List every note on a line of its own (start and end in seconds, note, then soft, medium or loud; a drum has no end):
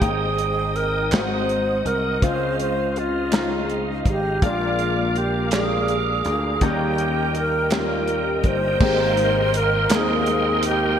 0.00 1.08 G#1 medium
0.00 1.08 G#2 soft
0.00 0.79 G#3 soft
0.00 0.08 A#3 soft
0.00 0.80 D#4 medium
0.00 0.77 G#4 medium
0.00 4.38 D#5 medium
0.00 1.08 G5 soft
0.00 0.80 G5 medium
0.00 2.18 D#6 medium
0.00 kick medium
0.00 closed hi-hat medium
0.07 0.82 C4 soft
0.38 closed hi-hat soft
0.76 1.14 A#4 medium
0.76 closed hi-hat soft
1.12 1.81 G#1 medium
1.12 2.18 G#2 soft
1.12 1.90 G#3 soft
1.12 1.18 A#3 soft
1.12 1.90 D#4 soft
1.12 1.90 F#4 medium
1.12 1.88 C5 medium
1.12 2.21 F#5 soft
1.12 snare medium
1.12 clap medium
1.12 closed hi-hat medium
1.19 1.93 C4 soft
1.49 closed hi-hat soft
1.85 2.19 C2 medium
1.85 2.26 A#4 medium
1.85 closed hi-hat soft
2.22 4.02 C#2 medium
2.22 3.28 C#3 soft
2.22 3.00 G#3 medium
2.22 3.00 C4 medium
2.22 3.00 C#4 medium
2.22 3.00 F4 medium
2.22 2.60 C5 medium
2.22 4.40 F5 soft
2.22 kick medium
2.22 closed hi-hat medium
2.59 2.99 C5 medium
2.59 closed hi-hat soft
2.96 3.79 F4 medium
2.96 closed hi-hat soft
3.31 4.09 G#3 medium
3.31 4.10 C4 soft
3.31 4.10 C#4 soft
3.31 4.10 D#4 medium
3.31 snare medium
3.31 clap medium
3.31 closed hi-hat medium
3.70 closed hi-hat soft
4.05 4.39 G#1 medium
4.05 4.44 G4 medium
4.05 kick medium
4.05 closed hi-hat soft
4.42 6.21 A#1 medium
4.42 5.48 A#2 soft
4.42 5.20 G#3 medium
4.42 5.20 A#3 medium
4.42 5.20 D4 soft
4.42 5.19 F4 medium
4.42 5.20 F4 medium
4.42 8.77 A#4 medium
4.42 6.60 F5 soft
4.42 6.59 D6 medium
4.42 kick medium
4.42 closed hi-hat medium
4.79 closed hi-hat soft
5.16 5.52 G4 medium
5.16 closed hi-hat soft
5.51 6.29 G#3 medium
5.51 6.29 A#3 soft
5.51 6.30 D4 soft
5.51 5.59 G4 soft
5.51 6.65 G#4 medium
5.51 snare medium
5.51 clap medium
5.51 closed hi-hat medium
5.59 6.33 G#4 medium
5.88 closed hi-hat soft
6.25 6.59 D2 medium
6.25 closed hi-hat soft
6.61 8.40 D#2 medium
6.61 7.67 D#3 soft
6.61 7.39 G3 medium
6.61 7.39 A#3 medium
6.61 7.39 C#4 medium
6.61 7.40 D#4 medium
6.61 7.35 G4 medium
6.61 8.79 D#5 medium
6.61 8.79 G5 medium
6.61 kick medium
6.61 closed hi-hat medium
6.98 closed hi-hat soft
7.35 7.70 A#4 medium
7.35 closed hi-hat soft
7.70 8.48 G3 medium
7.70 8.49 A#3 medium
7.70 8.49 C#4 medium
7.70 7.78 D#4 medium
7.70 8.48 A#4 medium
7.70 snare medium
7.70 clap medium
7.70 closed hi-hat medium
7.78 8.52 F4 medium
8.08 closed hi-hat soft
8.44 8.78 G1 medium
8.44 9.58 C5 medium
8.44 kick medium
8.44 closed hi-hat soft
8.80 9.86 G#1 medium
8.80 9.86 G#2 medium
8.80 9.58 G#3 medium
8.80 9.58 A#3 medium
8.80 9.58 C4 medium
8.80 9.58 D#4 medium
8.80 9.59 G4 medium
8.80 10.99 A#4 medium
8.80 10.98 D#5 medium
8.80 10.98 G5 medium
8.80 10.98 C6 medium
8.80 kick loud
8.80 crash loud
9.17 closed hi-hat soft
9.54 9.95 A#4 medium
9.54 closed hi-hat medium
9.90 10.96 D#2 medium
9.90 10.68 G#3 medium
9.90 10.68 A#3 medium
9.90 10.68 C4 medium
9.90 10.68 D#4 medium
9.90 10.68 A#4 medium
9.90 snare loud
9.90 clap medium
9.90 closed hi-hat medium
9.94 10.67 G#4 medium
10.26 closed hi-hat soft
10.63 10.99 G4 medium
10.63 closed hi-hat medium